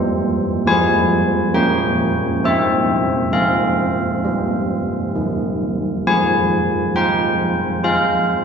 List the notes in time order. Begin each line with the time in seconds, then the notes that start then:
Already playing: G3 A#4 C5
0.67 F3 C5 G#5
1.54 A#3 C#5 G5
2.44 C4 C5 E5
3.32 F3 C5 F5
4.25 G3
5.16 D#3
6.07 F3 G#5
6.96 F4 C5 G5
7.84 F4 C5 F5